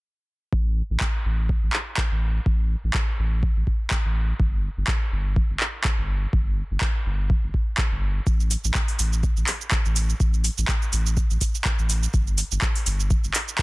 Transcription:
0.53 A1, kick
0.90 A1
1.00 kick, clap
1.25 A1
1.49 kick
1.63 A1
1.73 clap
1.97 kick, clap
2.11 A1
2.46 A1, kick
2.84 A1
2.94 kick, clap
3.19 A1
3.43 kick
3.56 A1
3.67 kick
3.91 kick, clap
4.05 A1
4.40 G1, kick
4.77 G1
4.87 kick, clap
5.12 G1
5.36 kick
5.50 G1
5.60 clap
5.84 kick, clap
5.98 G1
6.33 G1, kick
6.71 G1
6.81 kick, clap
7.06 G1
7.30 kick
7.43 G1
7.54 kick
7.78 kick, clap
7.92 G1
8.27 A1, kick, shaker
8.40 shaker
8.51 open hi-hat, shaker
8.64 A1, shaker
8.74 kick, clap, shaker
8.88 open hi-hat, shaker
8.99 A1, open hi-hat, shaker
9.13 shaker
9.23 kick, shaker
9.37 A1, shaker
9.47 clap, open hi-hat, shaker
9.61 shaker
9.71 kick, clap, shaker
9.85 A1, shaker
9.96 open hi-hat, shaker
10.10 shaker
10.20 A1, kick, shaker
10.34 shaker
10.44 open hi-hat, shaker
10.58 A1, shaker
10.68 kick, clap, shaker
10.82 shaker
10.93 A1, open hi-hat, shaker
11.06 shaker
11.17 kick, shaker
11.30 A1, shaker
11.41 kick, open hi-hat, shaker
11.55 shaker
11.65 kick, clap, shaker
11.79 A1, shaker
11.90 open hi-hat, shaker
12.03 shaker
12.14 G1, kick, shaker
12.27 shaker
12.38 open hi-hat, shaker
12.51 G1, shaker
12.62 kick, clap, shaker
12.76 open hi-hat, shaker
12.86 G1, open hi-hat, shaker
13.00 shaker
13.11 kick, shaker
13.24 G1, shaker
13.34 clap, open hi-hat, shaker
13.48 shaker
13.58 kick, clap, shaker

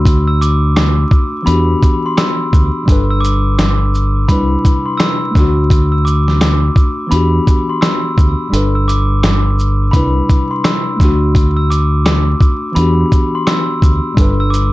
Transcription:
Already playing: D2 A3 D4 F#4
0.05 kick, closed hi-hat
0.27 E6
0.41 D6, closed hi-hat, shaker
0.76 cross-stick, snare, closed hi-hat
1.11 kick, shaker
1.42 E3 B3 B5
1.47 E2 D4 F#4, closed hi-hat
1.51 G4
1.83 kick, closed hi-hat, shaker
2.06 C6
2.17 E6, cross-stick, snare, closed hi-hat
2.53 D2, kick, shaker
2.83 G2 G3
2.87 G1 D4 A4, kick, closed hi-hat
2.92 B4
3.10 E6
3.21 D6
3.25 closed hi-hat, shaker
3.59 cross-stick, snare, closed hi-hat
3.95 shaker
4.28 C2 C3 G3 D4 E4 B5, kick, closed hi-hat
4.32 B4
4.65 kick, closed hi-hat, shaker
4.86 C6
4.97 E6, cross-stick, snare, closed hi-hat
5.31 A3
5.35 D2 D4, kick, snare, shaker
5.40 F#4
5.70 kick, closed hi-hat
5.92 E6
6.05 D6, shaker
6.28 snare
6.41 cross-stick, snare, closed hi-hat
6.76 kick, shaker
7.07 E3 B3 B5
7.12 E2 D4 F#4, closed hi-hat
7.16 G4
7.47 kick, closed hi-hat, shaker
7.69 C6
7.81 E6, cross-stick, snare, closed hi-hat
8.18 D2, kick, shaker
8.48 G2 G3
8.52 G1 D4 A4, closed hi-hat
8.56 B4
8.75 E6
8.88 D6, closed hi-hat, shaker
9.23 cross-stick, snare, closed hi-hat
9.59 shaker
9.91 C2 C3 G3 D4 B5, kick, closed hi-hat
9.95 E4 B4
10.30 kick, closed hi-hat, shaker
10.51 C6
10.64 E6, cross-stick, snare, closed hi-hat
10.96 A3
11.00 D2 D4, kick, snare, shaker
11.04 F#4
11.35 kick, closed hi-hat
11.57 E6
11.70 D6, closed hi-hat, shaker
12.06 cross-stick, snare, closed hi-hat
12.41 kick, shaker
12.72 E3 B3 B5
12.76 E2 D4 F#4, closed hi-hat
12.81 G4
13.12 kick, closed hi-hat, shaker
13.35 C6
13.47 E6, cross-stick, snare, closed hi-hat
13.82 D2, kick, shaker
14.12 G2 G3
14.17 G1 D4 A4, kick, closed hi-hat
14.21 B4
14.40 E6
14.50 D6, closed hi-hat, shaker

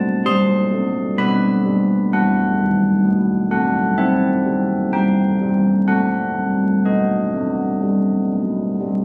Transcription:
Already playing: F#3 C5 A5
0.26 G3 C6
0.73 A3
1.17 B3 B4 B5
1.66 G3
2.12 E3 F#5
2.59 D#3
3.05 F#3
3.51 A3 F#5
3.98 C4 G4 E5
4.45 G3
4.93 E3 G5
5.41 G3
5.88 A3 F#4 F#5
6.37 F#3
6.85 B3 F#4 D#5
7.35 A3
7.82 G3
8.32 F#3
8.80 G3

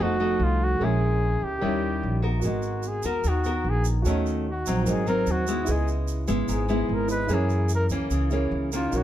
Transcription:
Already playing: F#4
0.00 F1 F3 A3 D#4 F#4 A4 C5 D#5
0.20 A3 D#4 F#4
0.40 C2 F4
0.64 F#4
0.78 A#1 A#2 G#3 C#4 G#4 A#4 C#5
0.82 E4 G#4 E5
1.41 C#2 G4
1.59 D#3 G3 C#4 E4 G4 A#4 C#5
1.63 D#2 E5
2.03 A#1
2.22 B3 F#4 A#4
2.40 F#4 A#4, shaker
2.44 G#1 G#3 F#4 D#5
2.62 shaker
2.83 shaker
2.88 G#4
3.03 D#2 B3 F#4 A#4, shaker
3.24 D#2 D#3, shaker
3.28 F#4
3.44 B3 F#4 A#4, shaker
3.64 A#1
3.70 G#4
3.84 shaker
4.02 D#2 D#3 F#4 A4, shaker
4.06 A3 C#4 F#4 C#5 D#5
4.26 shaker
4.51 F#4
4.66 A#1 F#3 C4 D#4, shaker
4.83 G#1 G#2 F#4 A#4, shaker
4.87 C5 D#5
4.92 G#4
5.07 F#3 C4 D#4 A#4, shaker
5.27 D#2, shaker
5.31 F#4
5.47 G#3 B3 E4, shaker
5.65 C#2 C#3 E4 G#4 B4, shaker
5.70 G#4 D#5
5.88 shaker
6.08 shaker
6.28 G#1 G#3 B3 E4, shaker
6.48 G#1 G#2, shaker
6.53 G#4
6.69 G#3 B3 E4, shaker
6.89 G#1
6.94 A#4
7.08 E4 G#4 B4 D#5, shaker
7.27 F#2 E3 A#3 C#4 E4 G#4, shaker
7.31 G#4 A#4 C#5
7.49 shaker
7.69 shaker
7.75 A#4
7.89 C#2 E3 A#3 C#4, shaker
8.10 C#2 C#3, shaker
8.30 E3 A#3 C#4 E4 G#4 A#4 C#5, shaker
8.51 C#2
8.72 D#3 A#3 C#4 F4, shaker
8.89 B1 B2 D#4 F#4, shaker
8.94 F#4 A#4 C#5

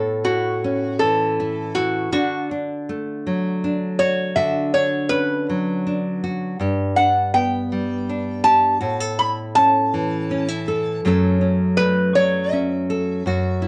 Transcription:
Already playing: A2 A4
0.25 E4 F#4
0.64 C#4
0.99 E3 A4
1.40 E4
1.75 E4 F#4
2.12 D3 D4 F#4
2.51 D4
2.89 A3
3.27 F#3
3.64 D4
3.99 F#4 C#5
4.36 D3 F#4 E5
4.74 D4 C#5
5.09 C#4 B4
5.50 F#3
5.87 D4
6.24 F#4
6.60 G2 G4
6.96 D4 F#5
7.34 B3 G5
7.72 G3
8.09 D4
8.44 G4 A5
8.81 A2 F#4
9.00 A4
9.19 E4 B5
9.55 C#4 A5
9.94 E3
10.31 C#4
10.48 E4
10.68 A4
11.05 F#2 F#3 A3 C#4 A4
11.41 C#4
11.77 A3 B4
12.15 F#3 C#5
12.52 C#4 E5
12.90 A4
13.26 F#2 F#4
13.62 E4

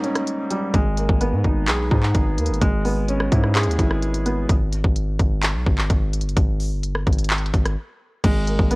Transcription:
Already playing: G#2 G3 A#3 C#4 D#4
0.04 C#4, closed hi-hat
0.16 cross-stick, closed hi-hat
0.27 closed hi-hat
0.51 G3, closed hi-hat
0.74 G#1 G#3, kick, closed hi-hat
0.98 A#3, closed hi-hat
1.09 G#1, kick
1.21 B3, closed hi-hat
1.33 G#2
1.44 G#1 D#4, kick, closed hi-hat
1.68 B1 G#4, clap, closed hi-hat
1.91 G#2 D#4, kick
2.03 clap
2.15 G#1, kick, closed hi-hat
2.38 D#2 A#3, closed hi-hat
2.46 G#1, closed hi-hat
2.54 closed hi-hat
2.62 G#1 G#3, kick, closed hi-hat
2.85 B3, open hi-hat
3.09 C#4, closed hi-hat
3.20 cross-stick
3.32 G#2 E4, kick, closed hi-hat
3.44 cross-stick
3.55 G#4, clap, closed hi-hat
3.63 D#2, closed hi-hat
3.71 closed hi-hat
3.79 G#1 E4, kick, closed hi-hat
3.91 cross-stick
4.02 closed hi-hat
4.14 closed hi-hat
4.26 B3, closed hi-hat
4.49 G#1, kick, closed hi-hat
4.73 closed hi-hat
4.84 G#1, kick
4.96 closed hi-hat
5.19 G#1, kick, closed hi-hat
5.43 clap, closed hi-hat
5.55 B1
5.66 G#1, kick
5.78 clap
5.90 G#1, kick, closed hi-hat
6.13 closed hi-hat
6.21 G1, closed hi-hat
6.29 closed hi-hat
6.37 G#1, kick, closed hi-hat
6.60 open hi-hat
6.72 G1
6.83 closed hi-hat
6.95 cross-stick
7.07 G#1, kick, closed hi-hat
7.13 closed hi-hat
7.19 closed hi-hat
7.25 closed hi-hat
7.30 clap, closed hi-hat
7.38 closed hi-hat
7.46 closed hi-hat
7.54 G#1, kick, closed hi-hat
7.66 cross-stick, closed hi-hat
8.24 G#1 G#3, kick, closed hi-hat, crash
8.48 A#3, closed hi-hat
8.59 G#1, kick
8.71 B3, closed hi-hat

